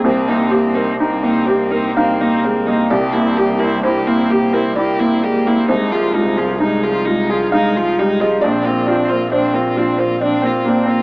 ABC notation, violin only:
X:1
M:3/4
L:1/16
Q:1/4=65
K:Cm
V:1 name="Violin"
C E C E C E C E C E C E | G =E G E G E G E G E G E | E F E F E F E F E F E F | D F D F D F D F D F D F |]